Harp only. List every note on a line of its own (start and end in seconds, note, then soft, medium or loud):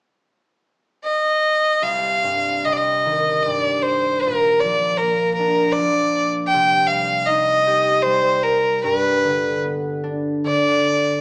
1.82 4.28 C2 soft
2.23 2.68 G2 soft
2.65 3.09 C3 soft
3.06 4.28 D#3 soft
3.46 4.28 G2 soft
4.26 6.56 A#2 soft
4.64 5.77 F3 soft
5.01 8.23 A#3 soft
5.39 7.34 D4 soft
5.78 6.56 F3 soft
6.54 8.89 C3 soft
6.91 8.04 G3 soft
7.28 9.30 D#4 soft
7.67 10.02 G4 soft
8.05 8.89 G3 soft
8.84 11.21 G2 medium
9.24 10.43 D3 soft
9.63 11.21 B3 soft
10.04 11.21 D4 soft
10.44 11.21 D3 soft